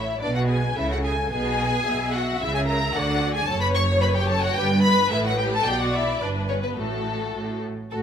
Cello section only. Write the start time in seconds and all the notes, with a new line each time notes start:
Already playing: A2
0.22 B2
0.77 C#3
1.32 B2
1.86 B2
2.41 C#3
2.96 D3
3.49 F#2
4.58 G2
5.11 A2
5.66 B2
6.22 G2
6.79 A2
7.36 A2
7.93 F#4